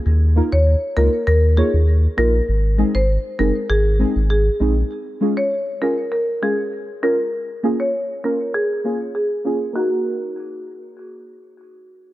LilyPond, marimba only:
\new Staff \with { instrumentName = "Marimba" } { \time 4/4 \key ees \dorian \tempo 4 = 99 r8. des''8 r16 bes'8 bes'16 r16 aes'16 r8. bes'16 r16 | r8. c''8 r16 bes'8 aes'8. r16 aes'8. r16 | r8. des''8 r16 bes'8 bes'16 r16 aes'16 r8. bes'16 r16 | r8. des''8 r16 bes'8 aes'8. r16 aes'8. r16 |
ges'2. r4 | }